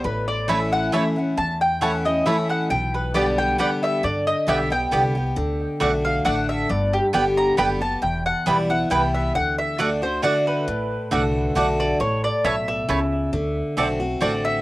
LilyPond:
<<
  \new Staff \with { instrumentName = "Mandolin" } { \time 3/4 \key g \major \tempo 4 = 136 b'8 d''8 e''8 fis''8 e''8 r8 | a''8 g''8 fis''8 ees''8 e''8 fis''8 | g''8 b'8 d''8 g''8 fis''8 e''8 | d''8 ees''8 e''8 g''4~ g''16 r16 |
r4. f''8 fis''8 e''8 | d''8 g'8 r8 bes''8 b''8 a''8 | g''8 fis''8 d''8 fis''8 g''8 e''8 | fis''8 e''8 d''8 c''8 d''8 b'8~ |
b'2 r8 d''8 | cis''8 d''8 e''8 e''4. | r2 d''8 e''8 | }
  \new Staff \with { instrumentName = "Resonator guitar played with a steel bar" } { \time 3/4 \key g \major b'8 d''8 e''8 fis''8 e''8 r8 | a''8 g''8 fis''8 ees''8 e''8 fis''8 | g''8 b'8 d''8 g''8 fis''8 e''8 | d''8 ees''8 e''8 g''4~ g''16 r16 |
r2. | r2. | r2. | r2. |
r2. | r2. | r2. | }
  \new Staff \with { instrumentName = "Mandolin" } { \time 3/4 \key g \major r4 <a e' cis'' a''>8 r8 <a e' cis'' a''>8 r8 | r4 <a e' cis'' a''>8 r8 <a e' cis'' a''>8 r8 | r4 <b g' d'' g''>8 r8 <b g' d'' g''>8 r8 | r4 <b g' d'' g''>8 r8 <b g' d'' g''>8 r8 |
r4 <a fis' d'' fis''>8 r8 <a fis' d'' fis''>8 r8 | r4 <b g' d'' g''>8 r8 <b g' d'' g''>8 r8 | r4 <b e' b' g''>8 r8 <b e' b' g''>8 r8 | r4 <a fis' d'' fis''>8 r8 <a fis' d'' fis''>8 r8 |
r4 <a fis' d'' fis''>8 r8 <a fis' d'' fis''>8 r8 | r4 <a e' cis'' a''>8 r8 <a e' cis'' a''>8 r8 | r4 <c' fis' d'' a''>8 r8 <c' fis' d'' a''>8 r8 | }
  \new Staff \with { instrumentName = "Steel-string acoustic guitar" } { \time 3/4 \key g \major << { r4 <e a cis' e'>4 <e a cis' e'>8 <cis' e'>8 | r4 <e a cis' e'>8 <cis' e'>8 <e a cis' e'>4 | r4 <d g b g'>4 <d g b g'>4 | r4 <d g b g'>8 <b g'>8 <d g b g'>8 <b g'>8 |
r4 <d a d' fis'>4 <d a d' fis'>4 | r4 <d g b g'>4 <d g b g'>8 <b g'>8 | r4 <e g b e'>8 <b e'>8 <e g b e'>4 | r4 <d a d' fis'>8 <d' fis'>8 <d a d' fis'>4 |
r4 <d a d' fis'>4 <d a d' fis'>4 | r2. | r4 <d a c' fis'>8 <c' fis'>8 <d a c' fis'>4 | } \\ { a,2 r4 | e,2 r4 | b,2 r4 | d2 r4 |
d2 r4 | g,2 r4 | e,2 r4 | d2 r4 |
a,2 r4 | a,4 b,4 cis4 | d2 r4 | } >> }
  \new Staff \with { instrumentName = "Upright bass" } { \clef bass \time 3/4 \key g \major a,,2. | e,2. | b,,2. | g,4 b,,4 c,4 |
d,4 b,,4 a,,4 | g,,4 g,,4 fis,,4 | e,,4 b,,4 c,4 | d,2. |
a,,4 c,4 b,,4 | a,,4 b,,4 cis,4 | d,4 b,,4 a,,4 | }
>>